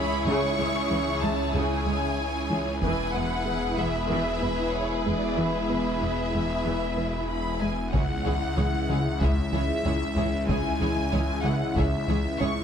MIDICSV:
0, 0, Header, 1, 12, 480
1, 0, Start_track
1, 0, Key_signature, 4, "minor"
1, 0, Tempo, 638298
1, 204, Time_signature, 4, 2, 24, 8
1, 9503, End_track
2, 0, Start_track
2, 0, Title_t, "Violin section"
2, 0, Program_c, 0, 48
2, 0, Note_on_c, 0, 83, 75
2, 206, Note_off_c, 0, 83, 0
2, 218, Note_on_c, 0, 85, 88
2, 916, Note_off_c, 0, 85, 0
2, 926, Note_on_c, 0, 81, 70
2, 1163, Note_on_c, 0, 80, 72
2, 1165, Note_off_c, 0, 81, 0
2, 2110, Note_off_c, 0, 80, 0
2, 2119, Note_on_c, 0, 80, 72
2, 2357, Note_off_c, 0, 80, 0
2, 2365, Note_on_c, 0, 78, 70
2, 2843, Note_on_c, 0, 76, 59
2, 2844, Note_off_c, 0, 78, 0
2, 3070, Note_off_c, 0, 76, 0
2, 3080, Note_on_c, 0, 76, 63
2, 3552, Note_off_c, 0, 76, 0
2, 3554, Note_on_c, 0, 73, 62
2, 3719, Note_off_c, 0, 73, 0
2, 3732, Note_on_c, 0, 71, 50
2, 3888, Note_off_c, 0, 71, 0
2, 3888, Note_on_c, 0, 74, 49
2, 4043, Note_off_c, 0, 74, 0
2, 4045, Note_on_c, 0, 76, 52
2, 5483, Note_on_c, 0, 83, 55
2, 5484, Note_off_c, 0, 76, 0
2, 5706, Note_off_c, 0, 83, 0
2, 5720, Note_on_c, 0, 80, 52
2, 5962, Note_off_c, 0, 80, 0
2, 5968, Note_on_c, 0, 78, 72
2, 6906, Note_off_c, 0, 78, 0
2, 6924, Note_on_c, 0, 76, 71
2, 7884, Note_off_c, 0, 76, 0
2, 7884, Note_on_c, 0, 80, 76
2, 8589, Note_off_c, 0, 80, 0
2, 8607, Note_on_c, 0, 78, 63
2, 8845, Note_off_c, 0, 78, 0
2, 8858, Note_on_c, 0, 76, 66
2, 9328, Note_on_c, 0, 85, 73
2, 9331, Note_off_c, 0, 76, 0
2, 9503, Note_off_c, 0, 85, 0
2, 9503, End_track
3, 0, Start_track
3, 0, Title_t, "Violin section"
3, 0, Program_c, 1, 48
3, 0, Note_on_c, 1, 68, 58
3, 0, Note_on_c, 1, 73, 58
3, 2098, Note_off_c, 1, 73, 0
3, 2099, Note_off_c, 1, 68, 0
3, 2122, Note_on_c, 1, 71, 52
3, 2124, Note_on_c, 1, 68, 53
3, 5782, Note_off_c, 1, 71, 0
3, 5783, Note_off_c, 1, 68, 0
3, 5964, Note_on_c, 1, 68, 46
3, 5967, Note_on_c, 1, 73, 42
3, 6025, Note_off_c, 1, 68, 0
3, 6027, Note_off_c, 1, 73, 0
3, 6204, Note_on_c, 1, 73, 42
3, 6205, Note_on_c, 1, 68, 40
3, 6264, Note_off_c, 1, 73, 0
3, 6265, Note_off_c, 1, 68, 0
3, 6442, Note_on_c, 1, 73, 39
3, 6449, Note_on_c, 1, 68, 40
3, 6502, Note_off_c, 1, 73, 0
3, 6509, Note_off_c, 1, 68, 0
3, 6691, Note_on_c, 1, 68, 39
3, 6693, Note_on_c, 1, 73, 38
3, 6751, Note_off_c, 1, 68, 0
3, 6753, Note_off_c, 1, 73, 0
3, 6933, Note_on_c, 1, 68, 44
3, 6935, Note_on_c, 1, 73, 44
3, 6994, Note_off_c, 1, 68, 0
3, 6995, Note_off_c, 1, 73, 0
3, 7168, Note_on_c, 1, 68, 44
3, 7171, Note_on_c, 1, 73, 40
3, 7229, Note_off_c, 1, 68, 0
3, 7231, Note_off_c, 1, 73, 0
3, 7411, Note_on_c, 1, 68, 42
3, 7411, Note_on_c, 1, 73, 45
3, 7471, Note_off_c, 1, 68, 0
3, 7471, Note_off_c, 1, 73, 0
3, 7649, Note_on_c, 1, 68, 38
3, 7652, Note_on_c, 1, 73, 40
3, 7709, Note_off_c, 1, 68, 0
3, 7712, Note_off_c, 1, 73, 0
3, 7895, Note_on_c, 1, 68, 48
3, 7895, Note_on_c, 1, 73, 47
3, 7955, Note_off_c, 1, 68, 0
3, 7956, Note_off_c, 1, 73, 0
3, 8130, Note_on_c, 1, 68, 42
3, 8130, Note_on_c, 1, 73, 44
3, 8190, Note_off_c, 1, 68, 0
3, 8191, Note_off_c, 1, 73, 0
3, 8369, Note_on_c, 1, 73, 45
3, 8372, Note_on_c, 1, 68, 41
3, 8430, Note_off_c, 1, 73, 0
3, 8433, Note_off_c, 1, 68, 0
3, 8614, Note_on_c, 1, 73, 40
3, 8615, Note_on_c, 1, 68, 39
3, 8674, Note_off_c, 1, 73, 0
3, 8675, Note_off_c, 1, 68, 0
3, 8851, Note_on_c, 1, 68, 48
3, 8854, Note_on_c, 1, 73, 50
3, 8911, Note_off_c, 1, 68, 0
3, 8914, Note_off_c, 1, 73, 0
3, 9093, Note_on_c, 1, 68, 44
3, 9094, Note_on_c, 1, 73, 47
3, 9153, Note_off_c, 1, 68, 0
3, 9154, Note_off_c, 1, 73, 0
3, 9333, Note_on_c, 1, 73, 45
3, 9335, Note_on_c, 1, 68, 47
3, 9393, Note_off_c, 1, 73, 0
3, 9395, Note_off_c, 1, 68, 0
3, 9503, End_track
4, 0, Start_track
4, 0, Title_t, "Analog synth pad"
4, 0, Program_c, 2, 89
4, 0, Note_on_c, 2, 56, 65
4, 0, Note_on_c, 2, 61, 62
4, 0, Note_on_c, 2, 64, 66
4, 0, Note_on_c, 2, 76, 62
4, 2087, Note_off_c, 2, 56, 0
4, 2087, Note_off_c, 2, 64, 0
4, 2089, Note_off_c, 2, 76, 0
4, 2116, Note_off_c, 2, 61, 0
4, 2119, Note_on_c, 2, 56, 63
4, 2119, Note_on_c, 2, 64, 64
4, 2124, Note_on_c, 2, 59, 64
4, 2124, Note_on_c, 2, 76, 59
4, 5931, Note_off_c, 2, 56, 0
4, 5931, Note_off_c, 2, 64, 0
4, 5934, Note_off_c, 2, 76, 0
4, 5964, Note_off_c, 2, 59, 0
4, 5964, Note_on_c, 2, 56, 62
4, 5966, Note_on_c, 2, 61, 63
4, 5966, Note_on_c, 2, 76, 66
4, 5968, Note_on_c, 2, 64, 63
4, 9503, Note_off_c, 2, 56, 0
4, 9503, Note_off_c, 2, 61, 0
4, 9503, Note_off_c, 2, 64, 0
4, 9503, Note_off_c, 2, 76, 0
4, 9503, End_track
5, 0, Start_track
5, 0, Title_t, "French horn section"
5, 0, Program_c, 3, 60
5, 5976, Note_on_c, 3, 56, 45
5, 5976, Note_on_c, 3, 64, 45
5, 9503, Note_off_c, 3, 56, 0
5, 9503, Note_off_c, 3, 64, 0
5, 9503, End_track
6, 0, Start_track
6, 0, Title_t, "Viola section"
6, 0, Program_c, 4, 48
6, 0, Note_on_c, 4, 64, 52
6, 207, Note_on_c, 4, 49, 67
6, 429, Note_off_c, 4, 49, 0
6, 443, Note_on_c, 4, 56, 43
6, 503, Note_off_c, 4, 56, 0
6, 687, Note_on_c, 4, 52, 47
6, 747, Note_off_c, 4, 52, 0
6, 920, Note_on_c, 4, 56, 49
6, 980, Note_off_c, 4, 56, 0
6, 1168, Note_on_c, 4, 49, 66
6, 1389, Note_off_c, 4, 49, 0
6, 1407, Note_on_c, 4, 56, 43
6, 1467, Note_off_c, 4, 56, 0
6, 1882, Note_on_c, 4, 56, 47
6, 1943, Note_off_c, 4, 56, 0
6, 2097, Note_off_c, 4, 64, 0
6, 2122, Note_on_c, 4, 52, 54
6, 2125, Note_on_c, 4, 64, 52
6, 2346, Note_off_c, 4, 52, 0
6, 2362, Note_on_c, 4, 56, 42
6, 2423, Note_off_c, 4, 56, 0
6, 2599, Note_on_c, 4, 52, 41
6, 2659, Note_off_c, 4, 52, 0
6, 2841, Note_on_c, 4, 56, 40
6, 2901, Note_off_c, 4, 56, 0
6, 3077, Note_on_c, 4, 52, 57
6, 3303, Note_off_c, 4, 52, 0
6, 3316, Note_on_c, 4, 56, 39
6, 3376, Note_off_c, 4, 56, 0
6, 3799, Note_on_c, 4, 56, 39
6, 3859, Note_off_c, 4, 56, 0
6, 4034, Note_on_c, 4, 52, 41
6, 4262, Note_off_c, 4, 52, 0
6, 4283, Note_on_c, 4, 56, 30
6, 4343, Note_off_c, 4, 56, 0
6, 4519, Note_on_c, 4, 52, 28
6, 4580, Note_off_c, 4, 52, 0
6, 4761, Note_on_c, 4, 56, 33
6, 4821, Note_off_c, 4, 56, 0
6, 4997, Note_on_c, 4, 52, 41
6, 5223, Note_off_c, 4, 52, 0
6, 5243, Note_on_c, 4, 56, 31
6, 5303, Note_off_c, 4, 56, 0
6, 5719, Note_on_c, 4, 56, 36
6, 5779, Note_off_c, 4, 56, 0
6, 5784, Note_off_c, 4, 64, 0
6, 5961, Note_on_c, 4, 56, 45
6, 5963, Note_on_c, 4, 64, 43
6, 6021, Note_off_c, 4, 56, 0
6, 6023, Note_off_c, 4, 64, 0
6, 6204, Note_on_c, 4, 64, 40
6, 6205, Note_on_c, 4, 56, 39
6, 6265, Note_off_c, 4, 56, 0
6, 6265, Note_off_c, 4, 64, 0
6, 6441, Note_on_c, 4, 64, 42
6, 6442, Note_on_c, 4, 56, 43
6, 6501, Note_off_c, 4, 64, 0
6, 6503, Note_off_c, 4, 56, 0
6, 6683, Note_on_c, 4, 56, 42
6, 6685, Note_on_c, 4, 64, 41
6, 6743, Note_off_c, 4, 56, 0
6, 6745, Note_off_c, 4, 64, 0
6, 6923, Note_on_c, 4, 56, 44
6, 6925, Note_on_c, 4, 64, 44
6, 6983, Note_off_c, 4, 56, 0
6, 6985, Note_off_c, 4, 64, 0
6, 7161, Note_on_c, 4, 64, 41
6, 7164, Note_on_c, 4, 56, 40
6, 7221, Note_off_c, 4, 64, 0
6, 7224, Note_off_c, 4, 56, 0
6, 7409, Note_on_c, 4, 64, 40
6, 7410, Note_on_c, 4, 56, 42
6, 7469, Note_off_c, 4, 64, 0
6, 7470, Note_off_c, 4, 56, 0
6, 7649, Note_on_c, 4, 64, 38
6, 7650, Note_on_c, 4, 56, 43
6, 7709, Note_off_c, 4, 64, 0
6, 7710, Note_off_c, 4, 56, 0
6, 7887, Note_on_c, 4, 56, 46
6, 7888, Note_on_c, 4, 64, 46
6, 7947, Note_off_c, 4, 56, 0
6, 7948, Note_off_c, 4, 64, 0
6, 8123, Note_on_c, 4, 56, 42
6, 8124, Note_on_c, 4, 64, 43
6, 8183, Note_off_c, 4, 56, 0
6, 8184, Note_off_c, 4, 64, 0
6, 8370, Note_on_c, 4, 64, 41
6, 8371, Note_on_c, 4, 56, 44
6, 8430, Note_off_c, 4, 64, 0
6, 8431, Note_off_c, 4, 56, 0
6, 8611, Note_on_c, 4, 64, 45
6, 8612, Note_on_c, 4, 56, 47
6, 8671, Note_off_c, 4, 64, 0
6, 8673, Note_off_c, 4, 56, 0
6, 8847, Note_on_c, 4, 64, 51
6, 8848, Note_on_c, 4, 56, 50
6, 8907, Note_off_c, 4, 64, 0
6, 8908, Note_off_c, 4, 56, 0
6, 9085, Note_on_c, 4, 56, 43
6, 9087, Note_on_c, 4, 64, 47
6, 9145, Note_off_c, 4, 56, 0
6, 9147, Note_off_c, 4, 64, 0
6, 9326, Note_on_c, 4, 64, 49
6, 9327, Note_on_c, 4, 56, 48
6, 9387, Note_off_c, 4, 56, 0
6, 9387, Note_off_c, 4, 64, 0
6, 9503, End_track
7, 0, Start_track
7, 0, Title_t, "Synth arpeggio sound"
7, 0, Program_c, 5, 84
7, 0, Note_on_c, 5, 52, 55
7, 106, Note_off_c, 5, 52, 0
7, 204, Note_on_c, 5, 49, 76
7, 348, Note_off_c, 5, 49, 0
7, 442, Note_on_c, 5, 56, 52
7, 586, Note_off_c, 5, 56, 0
7, 684, Note_on_c, 5, 52, 55
7, 828, Note_off_c, 5, 52, 0
7, 921, Note_on_c, 5, 52, 51
7, 1066, Note_off_c, 5, 52, 0
7, 1161, Note_on_c, 5, 49, 66
7, 1306, Note_off_c, 5, 49, 0
7, 1400, Note_on_c, 5, 56, 54
7, 1545, Note_off_c, 5, 56, 0
7, 1883, Note_on_c, 5, 52, 56
7, 2027, Note_off_c, 5, 52, 0
7, 2117, Note_on_c, 5, 52, 75
7, 2263, Note_off_c, 5, 52, 0
7, 2363, Note_on_c, 5, 59, 51
7, 2507, Note_off_c, 5, 59, 0
7, 2600, Note_on_c, 5, 56, 50
7, 2745, Note_off_c, 5, 56, 0
7, 2839, Note_on_c, 5, 56, 49
7, 2985, Note_off_c, 5, 56, 0
7, 3082, Note_on_c, 5, 52, 66
7, 3227, Note_off_c, 5, 52, 0
7, 3328, Note_on_c, 5, 59, 51
7, 3470, Note_off_c, 5, 59, 0
7, 3806, Note_on_c, 5, 56, 50
7, 3950, Note_off_c, 5, 56, 0
7, 4048, Note_on_c, 5, 52, 70
7, 4190, Note_off_c, 5, 52, 0
7, 4286, Note_on_c, 5, 59, 48
7, 4429, Note_off_c, 5, 59, 0
7, 4527, Note_on_c, 5, 56, 50
7, 4670, Note_off_c, 5, 56, 0
7, 4771, Note_on_c, 5, 56, 49
7, 4913, Note_off_c, 5, 56, 0
7, 5006, Note_on_c, 5, 52, 62
7, 5149, Note_off_c, 5, 52, 0
7, 5245, Note_on_c, 5, 59, 49
7, 5388, Note_off_c, 5, 59, 0
7, 5730, Note_on_c, 5, 56, 51
7, 5872, Note_off_c, 5, 56, 0
7, 5964, Note_on_c, 5, 49, 74
7, 6108, Note_off_c, 5, 49, 0
7, 6209, Note_on_c, 5, 52, 52
7, 6351, Note_off_c, 5, 52, 0
7, 6445, Note_on_c, 5, 52, 49
7, 6589, Note_off_c, 5, 52, 0
7, 6928, Note_on_c, 5, 49, 70
7, 7070, Note_off_c, 5, 49, 0
7, 7165, Note_on_c, 5, 52, 52
7, 7309, Note_off_c, 5, 52, 0
7, 7413, Note_on_c, 5, 61, 51
7, 7554, Note_off_c, 5, 61, 0
7, 7655, Note_on_c, 5, 52, 54
7, 7795, Note_off_c, 5, 52, 0
7, 7889, Note_on_c, 5, 49, 77
7, 8031, Note_off_c, 5, 49, 0
7, 8133, Note_on_c, 5, 52, 54
7, 8274, Note_off_c, 5, 52, 0
7, 8370, Note_on_c, 5, 52, 54
7, 8512, Note_off_c, 5, 52, 0
7, 8853, Note_on_c, 5, 49, 71
7, 8994, Note_off_c, 5, 49, 0
7, 9094, Note_on_c, 5, 52, 55
7, 9235, Note_off_c, 5, 52, 0
7, 9329, Note_on_c, 5, 61, 54
7, 9471, Note_off_c, 5, 61, 0
7, 9503, End_track
8, 0, Start_track
8, 0, Title_t, "Analog synth bass"
8, 0, Program_c, 6, 38
8, 5966, Note_on_c, 6, 37, 75
8, 6109, Note_off_c, 6, 37, 0
8, 6206, Note_on_c, 6, 37, 58
8, 6349, Note_off_c, 6, 37, 0
8, 6446, Note_on_c, 6, 37, 53
8, 6589, Note_off_c, 6, 37, 0
8, 6686, Note_on_c, 6, 49, 55
8, 6829, Note_off_c, 6, 49, 0
8, 6927, Note_on_c, 6, 37, 75
8, 7070, Note_off_c, 6, 37, 0
8, 7166, Note_on_c, 6, 37, 50
8, 7310, Note_off_c, 6, 37, 0
8, 7406, Note_on_c, 6, 37, 52
8, 7549, Note_off_c, 6, 37, 0
8, 7643, Note_on_c, 6, 37, 53
8, 7787, Note_off_c, 6, 37, 0
8, 7885, Note_on_c, 6, 37, 78
8, 8029, Note_off_c, 6, 37, 0
8, 8125, Note_on_c, 6, 37, 58
8, 8268, Note_off_c, 6, 37, 0
8, 8364, Note_on_c, 6, 37, 51
8, 8508, Note_off_c, 6, 37, 0
8, 8606, Note_on_c, 6, 49, 52
8, 8749, Note_off_c, 6, 49, 0
8, 8842, Note_on_c, 6, 37, 72
8, 8986, Note_off_c, 6, 37, 0
8, 9082, Note_on_c, 6, 37, 51
8, 9226, Note_off_c, 6, 37, 0
8, 9326, Note_on_c, 6, 37, 52
8, 9469, Note_off_c, 6, 37, 0
8, 9503, End_track
9, 0, Start_track
9, 0, Title_t, "Cello section"
9, 0, Program_c, 7, 48
9, 203, Note_on_c, 7, 37, 67
9, 263, Note_off_c, 7, 37, 0
9, 446, Note_on_c, 7, 37, 42
9, 506, Note_off_c, 7, 37, 0
9, 682, Note_on_c, 7, 37, 47
9, 742, Note_off_c, 7, 37, 0
9, 924, Note_on_c, 7, 37, 46
9, 984, Note_off_c, 7, 37, 0
9, 1165, Note_on_c, 7, 37, 64
9, 1225, Note_off_c, 7, 37, 0
9, 1405, Note_on_c, 7, 37, 47
9, 1465, Note_off_c, 7, 37, 0
9, 1883, Note_on_c, 7, 37, 46
9, 1943, Note_off_c, 7, 37, 0
9, 2119, Note_on_c, 7, 40, 57
9, 2179, Note_off_c, 7, 40, 0
9, 2363, Note_on_c, 7, 40, 41
9, 2423, Note_off_c, 7, 40, 0
9, 2604, Note_on_c, 7, 40, 41
9, 2664, Note_off_c, 7, 40, 0
9, 2842, Note_on_c, 7, 40, 42
9, 2902, Note_off_c, 7, 40, 0
9, 3087, Note_on_c, 7, 40, 52
9, 3147, Note_off_c, 7, 40, 0
9, 3328, Note_on_c, 7, 40, 38
9, 3389, Note_off_c, 7, 40, 0
9, 3806, Note_on_c, 7, 40, 37
9, 3867, Note_off_c, 7, 40, 0
9, 4044, Note_on_c, 7, 40, 46
9, 4104, Note_off_c, 7, 40, 0
9, 4287, Note_on_c, 7, 40, 31
9, 4348, Note_off_c, 7, 40, 0
9, 4525, Note_on_c, 7, 40, 35
9, 4585, Note_off_c, 7, 40, 0
9, 4767, Note_on_c, 7, 40, 35
9, 4827, Note_off_c, 7, 40, 0
9, 5004, Note_on_c, 7, 40, 46
9, 5065, Note_off_c, 7, 40, 0
9, 5244, Note_on_c, 7, 40, 33
9, 5304, Note_off_c, 7, 40, 0
9, 5726, Note_on_c, 7, 40, 35
9, 5786, Note_off_c, 7, 40, 0
9, 5968, Note_on_c, 7, 37, 49
9, 6028, Note_off_c, 7, 37, 0
9, 6206, Note_on_c, 7, 37, 44
9, 6266, Note_off_c, 7, 37, 0
9, 6440, Note_on_c, 7, 37, 43
9, 6500, Note_off_c, 7, 37, 0
9, 6687, Note_on_c, 7, 37, 43
9, 6747, Note_off_c, 7, 37, 0
9, 6922, Note_on_c, 7, 37, 49
9, 6982, Note_off_c, 7, 37, 0
9, 7164, Note_on_c, 7, 37, 47
9, 7224, Note_off_c, 7, 37, 0
9, 7402, Note_on_c, 7, 37, 51
9, 7462, Note_off_c, 7, 37, 0
9, 7646, Note_on_c, 7, 37, 52
9, 7706, Note_off_c, 7, 37, 0
9, 7880, Note_on_c, 7, 37, 52
9, 7940, Note_off_c, 7, 37, 0
9, 8123, Note_on_c, 7, 37, 45
9, 8183, Note_off_c, 7, 37, 0
9, 8365, Note_on_c, 7, 37, 52
9, 8425, Note_off_c, 7, 37, 0
9, 8605, Note_on_c, 7, 37, 50
9, 8665, Note_off_c, 7, 37, 0
9, 8843, Note_on_c, 7, 37, 54
9, 8903, Note_off_c, 7, 37, 0
9, 9087, Note_on_c, 7, 37, 49
9, 9147, Note_off_c, 7, 37, 0
9, 9322, Note_on_c, 7, 37, 52
9, 9382, Note_off_c, 7, 37, 0
9, 9503, End_track
10, 0, Start_track
10, 0, Title_t, "Detuned saw bass"
10, 0, Program_c, 8, 39
10, 0, Note_on_c, 8, 37, 58
10, 2121, Note_on_c, 8, 28, 58
10, 2132, Note_off_c, 8, 37, 0
10, 5958, Note_off_c, 8, 28, 0
10, 5962, Note_on_c, 8, 37, 55
10, 9503, Note_off_c, 8, 37, 0
10, 9503, End_track
11, 0, Start_track
11, 0, Title_t, "Double bass section"
11, 0, Program_c, 10, 48
11, 5966, Note_on_c, 10, 37, 48
11, 6026, Note_off_c, 10, 37, 0
11, 6211, Note_on_c, 10, 37, 47
11, 6271, Note_off_c, 10, 37, 0
11, 6446, Note_on_c, 10, 37, 50
11, 6507, Note_off_c, 10, 37, 0
11, 6686, Note_on_c, 10, 37, 46
11, 6747, Note_off_c, 10, 37, 0
11, 6924, Note_on_c, 10, 37, 51
11, 6984, Note_off_c, 10, 37, 0
11, 7165, Note_on_c, 10, 37, 47
11, 7225, Note_off_c, 10, 37, 0
11, 7405, Note_on_c, 10, 37, 48
11, 7465, Note_off_c, 10, 37, 0
11, 7649, Note_on_c, 10, 37, 49
11, 7709, Note_off_c, 10, 37, 0
11, 7886, Note_on_c, 10, 37, 46
11, 7946, Note_off_c, 10, 37, 0
11, 8129, Note_on_c, 10, 37, 46
11, 8189, Note_off_c, 10, 37, 0
11, 8368, Note_on_c, 10, 37, 52
11, 8428, Note_off_c, 10, 37, 0
11, 8603, Note_on_c, 10, 37, 46
11, 8663, Note_off_c, 10, 37, 0
11, 8848, Note_on_c, 10, 37, 53
11, 8908, Note_off_c, 10, 37, 0
11, 9085, Note_on_c, 10, 37, 49
11, 9146, Note_off_c, 10, 37, 0
11, 9323, Note_on_c, 10, 37, 55
11, 9384, Note_off_c, 10, 37, 0
11, 9503, End_track
12, 0, Start_track
12, 0, Title_t, "Taiko and cinematic ensemble drums"
12, 2120, Note_on_c, 9, 41, 50
12, 2195, Note_off_c, 9, 41, 0
12, 2839, Note_on_c, 9, 41, 32
12, 2915, Note_off_c, 9, 41, 0
12, 5967, Note_on_c, 9, 41, 82
12, 6042, Note_off_c, 9, 41, 0
12, 6931, Note_on_c, 9, 41, 68
12, 7006, Note_off_c, 9, 41, 0
12, 7890, Note_on_c, 9, 41, 79
12, 7965, Note_off_c, 9, 41, 0
12, 8845, Note_on_c, 9, 41, 74
12, 8920, Note_off_c, 9, 41, 0
12, 9503, End_track
0, 0, End_of_file